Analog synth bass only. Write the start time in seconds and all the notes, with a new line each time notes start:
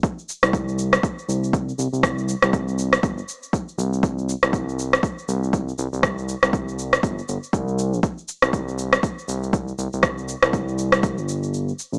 0.43 C2
1.28 C2
1.78 C2
1.93 C2
2.43 C2
3.03 G1
3.78 C2
4.43 C2
5.28 C2
5.78 C2
5.93 C2
6.43 C2
7.03 G1
7.28 G1
7.53 C2
7.93 A#1
8.42 C2
9.28 C2
9.78 C2
9.93 C2
10.43 C2
11.18 G1
11.92 A#1